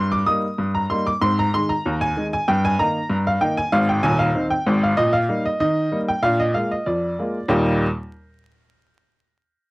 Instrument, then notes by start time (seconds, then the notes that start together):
upright piano
Already playing: G2 C6
0.12 D6
0.26 G3 A#3 D#4 D#6
0.58 G2
0.75 A#5
0.90 G3 A#3 D#4 C6
1.07 D6
1.21 G#2 C4 C6
1.39 A#5
1.54 D#3 G#3 D#4 C6
1.69 A#5
1.85 D#2
2.01 G#5
2.16 D#3 G#3 D#4
2.33 G#5
2.48 G2 G5
2.65 G#5
2.79 D#3 A#3 D#4 A#5
3.09 G2
3.27 F5
3.41 D#3 A#3 D#4 G5
3.57 G#5
3.72 G#1 G#2 F5
3.89 G5
4.03 D#1 D#2 G#5
4.19 F5
4.35 D#3 C4 D#4
4.50 G5
4.67 G#1 G#2
4.83 F5
4.97 A#2 D#5
5.13 F5
5.28 G3 A#3 D#4
5.45 D#5
5.60 D#3 D#5
5.92 G3 A#3 D#4
6.09 G5
6.23 A#2 D4 F5
6.40 D#5
6.54 G#3 A#3 F4 F5
6.71 D#5
6.86 F2 D5
7.19 G#3 A#3 F4
7.48 D#2 A#2 G3 A#3 D#4 G4 D#5